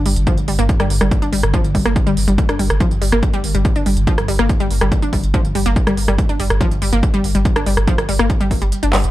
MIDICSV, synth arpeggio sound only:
0, 0, Header, 1, 2, 480
1, 0, Start_track
1, 0, Tempo, 422535
1, 786, Time_signature, 4, 2, 24, 8
1, 10348, End_track
2, 0, Start_track
2, 0, Title_t, "Synth arpeggio sound"
2, 0, Program_c, 0, 84
2, 66, Note_on_c, 0, 55, 74
2, 95, Note_off_c, 0, 55, 0
2, 306, Note_on_c, 0, 53, 100
2, 377, Note_off_c, 0, 53, 0
2, 546, Note_on_c, 0, 55, 79
2, 594, Note_off_c, 0, 55, 0
2, 667, Note_on_c, 0, 58, 97
2, 714, Note_off_c, 0, 58, 0
2, 907, Note_on_c, 0, 55, 100
2, 954, Note_off_c, 0, 55, 0
2, 1147, Note_on_c, 0, 55, 77
2, 1175, Note_off_c, 0, 55, 0
2, 1387, Note_on_c, 0, 62, 76
2, 1457, Note_off_c, 0, 62, 0
2, 1505, Note_on_c, 0, 55, 83
2, 1534, Note_off_c, 0, 55, 0
2, 1745, Note_on_c, 0, 53, 106
2, 1817, Note_off_c, 0, 53, 0
2, 1985, Note_on_c, 0, 55, 76
2, 2033, Note_off_c, 0, 55, 0
2, 2108, Note_on_c, 0, 58, 102
2, 2154, Note_off_c, 0, 58, 0
2, 2347, Note_on_c, 0, 55, 109
2, 2394, Note_off_c, 0, 55, 0
2, 2588, Note_on_c, 0, 55, 77
2, 2616, Note_off_c, 0, 55, 0
2, 2828, Note_on_c, 0, 62, 74
2, 2897, Note_off_c, 0, 62, 0
2, 2946, Note_on_c, 0, 55, 79
2, 2975, Note_off_c, 0, 55, 0
2, 3186, Note_on_c, 0, 53, 108
2, 3258, Note_off_c, 0, 53, 0
2, 3426, Note_on_c, 0, 55, 78
2, 3474, Note_off_c, 0, 55, 0
2, 3548, Note_on_c, 0, 58, 108
2, 3594, Note_off_c, 0, 58, 0
2, 3789, Note_on_c, 0, 55, 105
2, 3835, Note_off_c, 0, 55, 0
2, 4029, Note_on_c, 0, 55, 76
2, 4056, Note_off_c, 0, 55, 0
2, 4269, Note_on_c, 0, 62, 80
2, 4338, Note_off_c, 0, 62, 0
2, 4387, Note_on_c, 0, 55, 74
2, 4415, Note_off_c, 0, 55, 0
2, 4626, Note_on_c, 0, 53, 107
2, 4698, Note_off_c, 0, 53, 0
2, 4867, Note_on_c, 0, 55, 75
2, 4914, Note_off_c, 0, 55, 0
2, 4988, Note_on_c, 0, 58, 103
2, 5034, Note_off_c, 0, 58, 0
2, 5228, Note_on_c, 0, 55, 98
2, 5274, Note_off_c, 0, 55, 0
2, 5468, Note_on_c, 0, 55, 81
2, 5495, Note_off_c, 0, 55, 0
2, 5708, Note_on_c, 0, 62, 80
2, 5777, Note_off_c, 0, 62, 0
2, 5828, Note_on_c, 0, 55, 72
2, 5855, Note_off_c, 0, 55, 0
2, 6067, Note_on_c, 0, 53, 105
2, 6138, Note_off_c, 0, 53, 0
2, 6306, Note_on_c, 0, 55, 79
2, 6354, Note_off_c, 0, 55, 0
2, 6428, Note_on_c, 0, 58, 106
2, 6474, Note_off_c, 0, 58, 0
2, 6667, Note_on_c, 0, 55, 97
2, 6714, Note_off_c, 0, 55, 0
2, 6907, Note_on_c, 0, 55, 79
2, 6935, Note_off_c, 0, 55, 0
2, 7148, Note_on_c, 0, 62, 75
2, 7217, Note_off_c, 0, 62, 0
2, 7266, Note_on_c, 0, 55, 80
2, 7295, Note_off_c, 0, 55, 0
2, 7505, Note_on_c, 0, 53, 109
2, 7577, Note_off_c, 0, 53, 0
2, 7746, Note_on_c, 0, 55, 76
2, 7794, Note_off_c, 0, 55, 0
2, 7869, Note_on_c, 0, 58, 99
2, 7914, Note_off_c, 0, 58, 0
2, 8108, Note_on_c, 0, 55, 107
2, 8154, Note_off_c, 0, 55, 0
2, 8348, Note_on_c, 0, 55, 73
2, 8376, Note_off_c, 0, 55, 0
2, 8589, Note_on_c, 0, 62, 76
2, 8658, Note_off_c, 0, 62, 0
2, 8707, Note_on_c, 0, 55, 78
2, 8735, Note_off_c, 0, 55, 0
2, 8947, Note_on_c, 0, 53, 109
2, 9018, Note_off_c, 0, 53, 0
2, 9187, Note_on_c, 0, 55, 82
2, 9234, Note_off_c, 0, 55, 0
2, 9308, Note_on_c, 0, 58, 105
2, 9354, Note_off_c, 0, 58, 0
2, 9549, Note_on_c, 0, 55, 109
2, 9594, Note_off_c, 0, 55, 0
2, 9789, Note_on_c, 0, 55, 77
2, 9816, Note_off_c, 0, 55, 0
2, 10029, Note_on_c, 0, 62, 81
2, 10098, Note_off_c, 0, 62, 0
2, 10147, Note_on_c, 0, 55, 79
2, 10175, Note_off_c, 0, 55, 0
2, 10348, End_track
0, 0, End_of_file